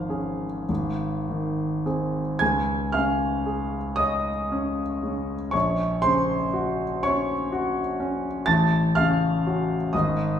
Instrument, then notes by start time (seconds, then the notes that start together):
grand piano
Already playing: G#1 F3 F5 F6
0.09 C#4 G#4
0.69 G#1
1.29 D#3
1.86 C4 G#4
2.39 C#2 G#5 G#6
2.92 C#3 F5 F6
3.46 G#4
3.96 C#5 D#5 D#6
4.52 C#4
5.03 C#3
5.51 A#1 C#5 C#6
6.02 C#3 C5 C6
6.54 F#4
7.03 C#4 C#5 C#6
7.52 F#4
8.00 C#4
8.46 A1 A5 A6
8.95 C#3 F5 F6
9.47 C#4 F#4
9.93 G#1 D#5 D#6